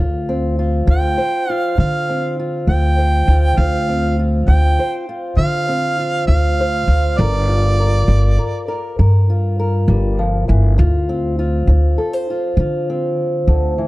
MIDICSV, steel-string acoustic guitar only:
0, 0, Header, 1, 2, 480
1, 0, Start_track
1, 0, Key_signature, -1, "minor"
1, 0, Tempo, 600000
1, 2873, Time_signature, 12, 3, 24, 8
1, 11101, End_track
2, 0, Start_track
2, 0, Title_t, "Steel-string acoustic guitar"
2, 0, Program_c, 0, 25
2, 0, Note_on_c, 0, 50, 75
2, 0, Note_on_c, 0, 65, 63
2, 231, Note_on_c, 0, 60, 53
2, 413, Note_off_c, 0, 50, 0
2, 468, Note_off_c, 0, 65, 0
2, 472, Note_on_c, 0, 65, 56
2, 699, Note_on_c, 0, 50, 74
2, 943, Note_on_c, 0, 72, 63
2, 1137, Note_off_c, 0, 50, 0
2, 1194, Note_off_c, 0, 65, 0
2, 1197, Note_on_c, 0, 65, 59
2, 1422, Note_on_c, 0, 50, 66
2, 1429, Note_off_c, 0, 65, 0
2, 1433, Note_on_c, 0, 65, 56
2, 1668, Note_off_c, 0, 60, 0
2, 1677, Note_on_c, 0, 60, 59
2, 1859, Note_off_c, 0, 50, 0
2, 1912, Note_off_c, 0, 65, 0
2, 1916, Note_on_c, 0, 65, 56
2, 2142, Note_on_c, 0, 50, 72
2, 2379, Note_off_c, 0, 72, 0
2, 2388, Note_on_c, 0, 72, 67
2, 2580, Note_off_c, 0, 50, 0
2, 2638, Note_off_c, 0, 65, 0
2, 2642, Note_on_c, 0, 65, 53
2, 2842, Note_off_c, 0, 72, 0
2, 2864, Note_on_c, 0, 50, 78
2, 2866, Note_off_c, 0, 65, 0
2, 2869, Note_on_c, 0, 65, 64
2, 3103, Note_off_c, 0, 60, 0
2, 3112, Note_on_c, 0, 60, 57
2, 3301, Note_off_c, 0, 50, 0
2, 3352, Note_off_c, 0, 65, 0
2, 3355, Note_on_c, 0, 65, 56
2, 3583, Note_on_c, 0, 50, 79
2, 3835, Note_on_c, 0, 72, 60
2, 4020, Note_off_c, 0, 50, 0
2, 4067, Note_off_c, 0, 65, 0
2, 4070, Note_on_c, 0, 65, 57
2, 4310, Note_on_c, 0, 50, 73
2, 4311, Note_off_c, 0, 65, 0
2, 4314, Note_on_c, 0, 65, 60
2, 4539, Note_off_c, 0, 60, 0
2, 4549, Note_on_c, 0, 60, 57
2, 4744, Note_off_c, 0, 50, 0
2, 4789, Note_off_c, 0, 65, 0
2, 4793, Note_on_c, 0, 65, 59
2, 5034, Note_on_c, 0, 50, 69
2, 5274, Note_off_c, 0, 72, 0
2, 5286, Note_on_c, 0, 72, 68
2, 5466, Note_off_c, 0, 50, 0
2, 5523, Note_off_c, 0, 65, 0
2, 5526, Note_on_c, 0, 65, 52
2, 5731, Note_off_c, 0, 72, 0
2, 5751, Note_off_c, 0, 60, 0
2, 5752, Note_on_c, 0, 55, 80
2, 5761, Note_on_c, 0, 70, 74
2, 5776, Note_off_c, 0, 65, 0
2, 5991, Note_on_c, 0, 65, 57
2, 6185, Note_off_c, 0, 55, 0
2, 6228, Note_off_c, 0, 70, 0
2, 6238, Note_on_c, 0, 70, 64
2, 6463, Note_on_c, 0, 55, 73
2, 6700, Note_off_c, 0, 70, 0
2, 6709, Note_on_c, 0, 70, 60
2, 6899, Note_off_c, 0, 55, 0
2, 6936, Note_off_c, 0, 70, 0
2, 6946, Note_on_c, 0, 70, 68
2, 7187, Note_off_c, 0, 70, 0
2, 7190, Note_on_c, 0, 55, 69
2, 7196, Note_on_c, 0, 70, 61
2, 7435, Note_off_c, 0, 65, 0
2, 7438, Note_on_c, 0, 65, 61
2, 7622, Note_off_c, 0, 55, 0
2, 7666, Note_off_c, 0, 70, 0
2, 7676, Note_on_c, 0, 70, 65
2, 7916, Note_on_c, 0, 55, 62
2, 8150, Note_on_c, 0, 53, 66
2, 8153, Note_off_c, 0, 55, 0
2, 8381, Note_off_c, 0, 53, 0
2, 8384, Note_on_c, 0, 52, 61
2, 8603, Note_off_c, 0, 70, 0
2, 8619, Note_off_c, 0, 52, 0
2, 8622, Note_on_c, 0, 50, 77
2, 8629, Note_off_c, 0, 65, 0
2, 8632, Note_on_c, 0, 65, 62
2, 8873, Note_on_c, 0, 60, 56
2, 9057, Note_off_c, 0, 50, 0
2, 9108, Note_off_c, 0, 65, 0
2, 9111, Note_on_c, 0, 65, 57
2, 9355, Note_on_c, 0, 50, 74
2, 9584, Note_on_c, 0, 69, 61
2, 9706, Note_off_c, 0, 69, 0
2, 9706, Note_on_c, 0, 72, 54
2, 9782, Note_off_c, 0, 50, 0
2, 9838, Note_off_c, 0, 65, 0
2, 9841, Note_on_c, 0, 65, 58
2, 10076, Note_on_c, 0, 50, 69
2, 10077, Note_off_c, 0, 65, 0
2, 10080, Note_on_c, 0, 65, 57
2, 10308, Note_off_c, 0, 60, 0
2, 10317, Note_on_c, 0, 60, 57
2, 10503, Note_off_c, 0, 50, 0
2, 10785, Note_on_c, 0, 50, 58
2, 11021, Note_off_c, 0, 50, 0
2, 11024, Note_on_c, 0, 52, 64
2, 11048, Note_off_c, 0, 65, 0
2, 11101, Note_off_c, 0, 52, 0
2, 11101, Note_off_c, 0, 60, 0
2, 11101, Note_off_c, 0, 72, 0
2, 11101, End_track
0, 0, End_of_file